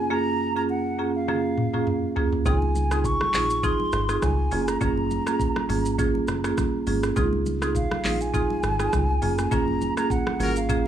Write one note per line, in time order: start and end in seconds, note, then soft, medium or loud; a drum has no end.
0.00 0.13 G#5 loud
0.10 0.52 F#2 medium
0.10 0.52 A#3 medium
0.10 0.52 C#4 medium
0.10 0.52 F4 medium
0.10 0.52 G#4 loud
0.10 0.56 A#5 loud
0.56 0.95 F#2 medium
0.56 0.96 A#3 medium
0.56 0.96 C#4 medium
0.56 0.96 F4 medium
0.56 0.96 G#4 medium
0.56 0.62 A#5 loud
0.70 1.12 F#5 loud
0.99 1.26 F#2 medium
0.99 1.26 A#3 medium
0.99 1.26 C#4 medium
0.99 1.26 F4 medium
0.99 1.26 G#4 medium
1.16 2.13 F5 medium
1.28 1.70 F#2 loud
1.28 1.70 A#3 medium
1.28 1.70 C#4 medium
1.28 1.70 F4 medium
1.28 1.70 G#4 loud
1.28 high tom medium
1.57 mid tom medium
1.74 1.88 F#2 medium
1.74 1.88 A#3 medium
1.74 1.88 C#4 medium
1.74 1.88 F4 medium
1.74 1.88 G#4 medium
1.74 mid tom medium
1.87 mid tom medium
2.16 2.34 F#2 medium
2.16 2.34 A#3 medium
2.16 2.34 C#4 medium
2.16 2.34 F4 medium
2.16 2.34 G#4 medium
2.16 floor tom loud
2.33 floor tom loud
2.46 3.17 C#2 loud
2.46 2.87 C4 loud
2.46 2.88 D#4 medium
2.46 2.88 F4 medium
2.46 2.88 G#4 loud
2.46 3.07 G#5 loud
2.46 kick loud
2.46 low conga medium
2.46 shaker medium
2.62 high conga medium
2.75 high conga medium
2.75 shaker medium
2.91 3.31 C4 medium
2.91 3.31 D#4 medium
2.91 3.31 F4 medium
2.91 3.31 G#4 medium
2.91 cross-stick loud
2.91 shaker medium
3.04 3.65 C#6 loud
3.04 kick loud
3.04 shaker medium
3.21 cross-stick loud
3.21 high conga medium
3.34 3.73 A#1 medium
3.34 3.61 C4 medium
3.34 3.61 D#4 medium
3.34 3.61 F4 medium
3.34 3.62 G#4 medium
3.34 clap loud
3.34 open hi-hat medium
3.34 high conga medium
3.34 low conga medium
3.34 shaker medium
3.50 shaker medium
3.63 4.05 C4 loud
3.63 4.05 D#4 medium
3.63 4.05 F4 medium
3.63 4.05 G#4 loud
3.63 4.22 C6 loud
3.63 kick loud
3.63 low conga medium
3.63 shaker medium
3.80 high conga medium
3.92 4.18 G#1 loud
3.92 cross-stick loud
3.92 shaker medium
4.09 4.23 C4 medium
4.09 4.24 D#4 medium
4.09 4.24 F4 medium
4.09 4.24 G#4 medium
4.09 cross-stick medium
4.09 shaker medium
4.22 4.48 C#2 loud
4.22 4.70 G#5 loud
4.22 kick loud
4.22 cross-stick loud
4.22 high conga medium
4.22 shaker medium
4.51 4.77 F#1 loud
4.51 4.69 A#3 medium
4.51 4.69 C#4 medium
4.51 4.69 F4 medium
4.51 4.69 G#4 medium
4.51 open hi-hat medium
4.51 shaker medium
4.68 4.81 A#5 medium
4.68 cross-stick loud
4.68 shaker medium
4.81 5.20 F#1 loud
4.81 5.23 A#3 loud
4.81 5.23 C#4 medium
4.81 5.23 F4 medium
4.81 5.23 G#4 loud
4.81 5.95 A#5 medium
4.81 kick loud
4.81 low conga medium
4.81 shaker medium
4.97 high conga medium
5.11 high conga medium
5.11 shaker medium
5.26 5.66 A#3 medium
5.26 5.66 C#4 medium
5.26 5.66 F4 medium
5.26 5.66 G#4 medium
5.26 cross-stick loud
5.26 shaker medium
5.40 kick loud
5.40 shaker medium
5.56 cross-stick loud
5.56 high conga medium
5.69 6.20 G#1 loud
5.69 5.96 A#3 medium
5.69 5.97 C#4 medium
5.69 5.97 F4 medium
5.69 5.97 G#4 medium
5.69 open hi-hat medium
5.69 high conga medium
5.69 low conga medium
5.69 shaker medium
5.85 shaker medium
5.98 6.40 A#3 medium
5.98 6.40 C#4 medium
5.98 6.41 F4 medium
5.98 6.41 G#4 loud
5.98 kick loud
5.98 low conga medium
5.98 shaker medium
6.15 high conga medium
6.28 6.53 F#1 loud
6.28 cross-stick loud
6.28 shaker medium
6.44 6.59 A#3 medium
6.44 6.59 C#4 medium
6.44 6.59 F4 medium
6.44 6.59 G#4 medium
6.44 cross-stick loud
6.44 shaker medium
6.58 kick loud
6.58 cross-stick loud
6.58 high conga medium
6.58 shaker medium
6.87 7.12 G#1 loud
6.87 7.04 A#3 medium
6.87 7.04 C#4 medium
6.87 7.04 F4 medium
6.87 7.04 G#4 medium
6.87 open hi-hat medium
6.87 shaker medium
7.03 cross-stick loud
7.03 shaker medium
7.16 7.88 C#2 loud
7.16 7.58 C4 loud
7.16 7.58 D#4 medium
7.16 7.58 F4 medium
7.16 7.58 G#4 loud
7.16 kick loud
7.16 low conga medium
7.16 shaker medium
7.33 high conga medium
7.46 high conga medium
7.46 shaker medium
7.62 8.01 C4 medium
7.62 8.01 D#4 medium
7.62 8.01 F4 medium
7.62 8.02 G#4 medium
7.62 cross-stick loud
7.62 shaker medium
7.75 8.23 F5 medium
7.75 kick loud
7.75 shaker medium
7.91 cross-stick loud
7.91 high conga medium
8.04 8.44 A#1 medium
8.04 8.32 C4 medium
8.04 8.32 D#4 medium
8.04 8.32 F4 medium
8.04 8.32 G#4 medium
8.04 clap loud
8.04 open hi-hat medium
8.04 high conga medium
8.04 low conga medium
8.04 shaker medium
8.21 9.53 G#5 loud
8.21 shaker medium
8.34 8.76 C4 loud
8.34 8.76 D#4 medium
8.34 8.76 F4 medium
8.34 8.76 G#4 loud
8.34 kick loud
8.34 low conga medium
8.34 shaker medium
8.50 high conga medium
8.63 8.89 G#1 loud
8.63 cross-stick loud
8.63 shaker medium
8.79 8.94 C4 medium
8.79 8.94 D#4 medium
8.79 8.94 F4 medium
8.79 8.94 G#4 medium
8.79 cross-stick loud
8.79 shaker medium
8.93 9.18 C#2 loud
8.93 kick loud
8.93 cross-stick loud
8.93 high conga medium
8.93 shaker medium
9.22 9.48 F#1 loud
9.22 9.39 A#3 medium
9.22 9.39 C#4 medium
9.22 9.40 F4 medium
9.22 9.40 G#4 medium
9.22 open hi-hat medium
9.22 shaker medium
9.38 cross-stick loud
9.38 shaker medium
9.51 9.91 F#1 loud
9.51 9.93 A#3 medium
9.51 9.93 C#4 medium
9.51 9.93 F4 medium
9.51 9.94 G#4 loud
9.51 9.97 A#5 loud
9.51 kick loud
9.51 low conga medium
9.51 shaker medium
9.68 high conga medium
9.81 high conga medium
9.81 shaker medium
9.97 10.37 A#3 medium
9.97 10.37 C#4 medium
9.97 10.37 F4 medium
9.97 10.37 G#4 medium
9.97 10.12 A#5 loud
9.97 cross-stick loud
9.97 shaker medium
10.10 10.56 F#5 loud
10.10 kick loud
10.10 shaker medium
10.27 cross-stick loud
10.27 high conga medium
10.40 10.88 G#1 loud
10.40 10.67 A#3 medium
10.40 10.54 A#3 medium
10.40 10.67 C#4 medium
10.40 10.67 F4 medium
10.40 10.54 F#4 medium
10.40 10.67 G#4 medium
10.40 10.54 A#4 loud
10.40 open hi-hat medium
10.40 high conga medium
10.40 low conga medium
10.40 shaker medium
10.56 10.88 F5 medium
10.56 shaker medium
10.69 10.88 A#3 loud
10.69 10.88 C#4 medium
10.69 10.88 F4 medium
10.69 10.88 G#4 loud
10.69 kick loud
10.69 low conga medium
10.69 shaker medium